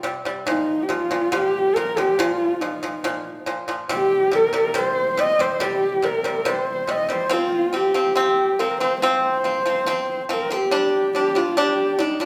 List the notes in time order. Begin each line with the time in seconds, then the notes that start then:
0.03 C3 G3
0.25 C3 G3
0.47 A#2 F3 D#4
0.83 G4
0.89 A#2 F3 F4
1.11 A#2 F3
1.32 A#2 F3 G4
1.76 A#2 F3 A#4
1.97 A#2 F3 G4
2.19 A#2 F3 F4
2.61 A#2 F3 D#4
2.83 A#2 F3
3.04 A#2 F3
3.46 A#2 F3
3.68 A#2 F3
3.89 C3 G3 G4
4.32 C3 G3
4.36 A#4
4.53 C3 G3
4.74 C3 G3 C5
5.17 C3 G3 D#5
5.39 C3 G3 C5
5.60 C3 G3 G4
6.02 C3 G3 A#4
6.24 C3 G3
6.45 C3 G3 C5
6.87 C3 G3 D#5
7.09 C3 G3 C5
7.29 F3 C4 F4
7.73 F3 C4 G4
7.94 F3 C4
8.16 F3 C4
8.59 F3 C4 A#4
8.80 F3 C4 C5
9.01 F3 C4 C5
9.44 F3 C4
9.66 F3 C4
9.86 F3 C4
10.29 F3 C4 A#4
10.50 F3 C4 G4
10.71 G3 D4
11.15 G3 D4 G4
11.35 G3 D4 F4
11.57 G3 D4 G4
11.99 G3 D4 D#4
12.20 G3 D4 F4